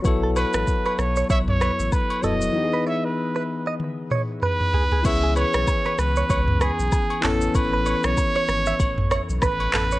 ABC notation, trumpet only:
X:1
M:4/4
L:1/16
Q:"Swing 16ths" 1/4=96
K:C#m
V:1 name="Trumpet"
z2 B4 c2 e c3 B2 d2- | d2 e B4 z4 z B4 | e2 c4 B4 G4 A2 | B3 c6- c z2 B4 |]